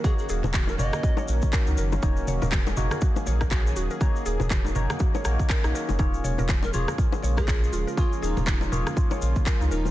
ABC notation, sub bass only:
X:1
M:4/4
L:1/16
Q:"Swing 16ths" 1/4=121
K:Ebm
V:1 name="Sub bass" clef=bass
z2 E,,, E,,,3 G,,, z3 B,,, z2 D,, G,,,2 | E,,,2 E,,, E,,,3 G,,, z3 B,,,4 E,,, z | z2 E,,, E,,,3 G,,, z3 B,,, z2 B,,, z G,,, | E,,,2 E,,, E,,,3 E,,, z3 B,,,4 E,,, z |
z2 E,,, E,,,3 E,,, z3 B,,, z2 D,, E,,,2 |]